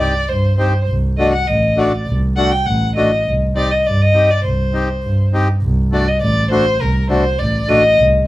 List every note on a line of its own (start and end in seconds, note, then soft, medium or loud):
0.00 0.13 C4 medium
0.00 0.14 D#4 medium
0.00 0.14 G4 medium
0.00 0.30 D5 medium
0.28 0.64 G2 medium
0.28 0.57 C5 medium
0.58 0.73 C4 medium
0.58 0.73 D#4 medium
0.58 0.74 G4 medium
0.58 0.86 C5 medium
0.88 1.24 C2 medium
1.17 1.33 A3 medium
1.17 1.33 D4 medium
1.17 1.34 F#4 medium
1.17 1.31 D#5 medium
1.32 1.49 F#5 medium
1.47 1.84 A1 medium
1.47 1.80 D#5 medium
1.77 1.92 A3 medium
1.77 1.92 D4 medium
1.77 1.92 F#4 medium
1.77 2.08 D5 medium
2.07 2.43 C2 medium
2.36 2.52 A3 medium
2.36 2.52 D4 medium
2.36 2.52 F#4 medium
2.36 2.53 F#5 loud
2.52 2.68 G5 medium
2.66 3.02 A1 medium
2.66 2.95 F#5 medium
2.95 3.11 A3 medium
2.95 3.11 D4 medium
2.95 3.12 F#4 medium
2.95 3.23 D#5 medium
3.26 3.62 C2 medium
3.55 3.70 C4 medium
3.55 3.71 D#4 medium
3.55 3.71 G4 medium
3.55 3.73 D5 loud
3.71 3.88 D#5 medium
3.85 4.21 G2 medium
3.85 4.03 D5 medium
4.01 4.32 D#5 medium
4.14 4.29 C4 medium
4.14 4.30 D#4 medium
4.14 4.30 G4 medium
4.30 4.44 D5 medium
4.43 4.79 C2 medium
4.43 5.29 C5 medium
4.73 4.88 C4 medium
4.73 4.89 D#4 medium
4.73 4.89 G4 medium
5.03 5.39 G2 medium
5.33 5.48 C4 medium
5.33 5.48 D#4 medium
5.33 5.48 G4 medium
5.62 5.98 C2 medium
5.92 6.07 A3 medium
5.92 6.07 D4 medium
5.92 6.07 F#4 medium
5.92 6.10 D5 medium
6.08 6.21 D#5 medium
6.22 6.57 A1 medium
6.22 6.49 D5 medium
6.51 6.65 A3 medium
6.51 6.66 D4 medium
6.51 6.66 F#4 medium
6.51 6.82 C5 loud
6.80 7.16 C2 medium
6.80 7.09 A#4 medium
7.09 7.24 A3 medium
7.09 7.24 D4 soft
7.09 7.25 F#4 medium
7.09 7.40 C5 medium
7.39 7.74 A1 medium
7.39 7.70 D5 medium
7.68 7.83 A3 medium
7.68 7.83 D4 medium
7.68 7.84 F#4 medium
7.68 7.98 D#5 loud
7.97 8.27 C2 medium